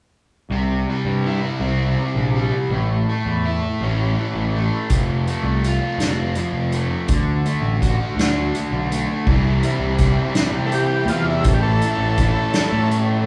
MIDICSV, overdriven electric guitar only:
0, 0, Header, 1, 2, 480
1, 0, Start_track
1, 0, Tempo, 729040
1, 340, Time_signature, 6, 3, 24, 8
1, 8732, End_track
2, 0, Start_track
2, 0, Title_t, "Overdriven electric guitar"
2, 0, Program_c, 0, 29
2, 340, Note_on_c, 0, 48, 54
2, 589, Note_on_c, 0, 55, 57
2, 829, Note_on_c, 0, 64, 62
2, 1067, Note_on_c, 0, 60, 55
2, 1301, Note_off_c, 0, 48, 0
2, 1309, Note_on_c, 0, 48, 56
2, 1538, Note_off_c, 0, 55, 0
2, 1546, Note_on_c, 0, 55, 59
2, 1785, Note_off_c, 0, 55, 0
2, 1786, Note_off_c, 0, 60, 0
2, 1787, Note_off_c, 0, 48, 0
2, 1787, Note_off_c, 0, 64, 0
2, 1791, Note_on_c, 0, 45, 57
2, 2034, Note_on_c, 0, 57, 53
2, 2272, Note_on_c, 0, 64, 56
2, 2523, Note_on_c, 0, 61, 56
2, 2757, Note_on_c, 0, 52, 58
2, 2989, Note_off_c, 0, 45, 0
2, 2996, Note_off_c, 0, 57, 0
2, 2999, Note_on_c, 0, 57, 64
2, 3230, Note_off_c, 0, 52, 0
2, 3230, Note_off_c, 0, 64, 0
2, 3232, Note_on_c, 0, 53, 55
2, 3235, Note_off_c, 0, 61, 0
2, 3475, Note_off_c, 0, 57, 0
2, 3477, Note_on_c, 0, 57, 54
2, 3721, Note_on_c, 0, 65, 60
2, 3961, Note_on_c, 0, 60, 62
2, 4183, Note_off_c, 0, 53, 0
2, 4191, Note_on_c, 0, 53, 57
2, 4424, Note_off_c, 0, 57, 0
2, 4432, Note_on_c, 0, 57, 62
2, 4669, Note_off_c, 0, 53, 0
2, 4669, Note_off_c, 0, 57, 0
2, 4673, Note_on_c, 0, 50, 62
2, 4674, Note_off_c, 0, 60, 0
2, 4674, Note_off_c, 0, 65, 0
2, 4912, Note_on_c, 0, 57, 61
2, 5154, Note_on_c, 0, 66, 65
2, 5394, Note_on_c, 0, 62, 60
2, 5622, Note_off_c, 0, 50, 0
2, 5630, Note_on_c, 0, 50, 55
2, 5863, Note_off_c, 0, 57, 0
2, 5871, Note_on_c, 0, 57, 62
2, 6107, Note_on_c, 0, 48, 78
2, 6108, Note_off_c, 0, 50, 0
2, 6108, Note_off_c, 0, 57, 0
2, 6109, Note_off_c, 0, 62, 0
2, 6109, Note_off_c, 0, 66, 0
2, 6111, Note_on_c, 0, 52, 76
2, 6117, Note_on_c, 0, 60, 85
2, 6118, Note_on_c, 0, 55, 79
2, 6123, Note_on_c, 0, 64, 80
2, 6344, Note_off_c, 0, 64, 0
2, 6346, Note_on_c, 0, 64, 60
2, 6349, Note_off_c, 0, 60, 0
2, 6355, Note_off_c, 0, 55, 0
2, 6357, Note_on_c, 0, 60, 52
2, 6363, Note_on_c, 0, 55, 49
2, 6576, Note_off_c, 0, 52, 0
2, 6578, Note_off_c, 0, 55, 0
2, 6578, Note_on_c, 0, 52, 66
2, 6586, Note_off_c, 0, 48, 0
2, 6586, Note_off_c, 0, 60, 0
2, 6586, Note_on_c, 0, 55, 72
2, 6593, Note_on_c, 0, 60, 73
2, 6594, Note_off_c, 0, 64, 0
2, 6597, Note_on_c, 0, 64, 62
2, 6818, Note_off_c, 0, 64, 0
2, 6821, Note_off_c, 0, 60, 0
2, 6824, Note_off_c, 0, 55, 0
2, 6826, Note_on_c, 0, 64, 80
2, 6829, Note_on_c, 0, 60, 66
2, 6831, Note_off_c, 0, 52, 0
2, 6832, Note_on_c, 0, 55, 64
2, 6839, Note_on_c, 0, 52, 73
2, 6842, Note_on_c, 0, 48, 64
2, 7302, Note_off_c, 0, 64, 0
2, 7309, Note_off_c, 0, 60, 0
2, 7310, Note_on_c, 0, 64, 70
2, 7314, Note_off_c, 0, 55, 0
2, 7317, Note_on_c, 0, 60, 62
2, 7322, Note_on_c, 0, 55, 57
2, 7532, Note_off_c, 0, 64, 0
2, 7536, Note_off_c, 0, 52, 0
2, 7536, Note_off_c, 0, 60, 0
2, 7537, Note_off_c, 0, 48, 0
2, 7538, Note_off_c, 0, 55, 0
2, 7545, Note_on_c, 0, 45, 75
2, 7550, Note_on_c, 0, 52, 78
2, 7557, Note_on_c, 0, 57, 85
2, 7558, Note_on_c, 0, 61, 91
2, 7562, Note_on_c, 0, 64, 82
2, 7787, Note_off_c, 0, 64, 0
2, 7792, Note_off_c, 0, 61, 0
2, 7795, Note_on_c, 0, 64, 60
2, 7800, Note_on_c, 0, 61, 59
2, 7807, Note_off_c, 0, 57, 0
2, 7810, Note_on_c, 0, 57, 47
2, 8022, Note_off_c, 0, 52, 0
2, 8023, Note_off_c, 0, 45, 0
2, 8029, Note_off_c, 0, 57, 0
2, 8030, Note_off_c, 0, 61, 0
2, 8030, Note_on_c, 0, 52, 66
2, 8031, Note_on_c, 0, 57, 73
2, 8036, Note_off_c, 0, 64, 0
2, 8038, Note_on_c, 0, 61, 70
2, 8044, Note_on_c, 0, 64, 72
2, 8250, Note_off_c, 0, 64, 0
2, 8254, Note_off_c, 0, 61, 0
2, 8258, Note_on_c, 0, 64, 77
2, 8262, Note_off_c, 0, 52, 0
2, 8262, Note_on_c, 0, 61, 73
2, 8264, Note_off_c, 0, 57, 0
2, 8266, Note_on_c, 0, 57, 71
2, 8270, Note_on_c, 0, 52, 63
2, 8273, Note_on_c, 0, 45, 65
2, 8732, Note_off_c, 0, 45, 0
2, 8732, Note_off_c, 0, 52, 0
2, 8732, Note_off_c, 0, 57, 0
2, 8732, Note_off_c, 0, 61, 0
2, 8732, Note_off_c, 0, 64, 0
2, 8732, End_track
0, 0, End_of_file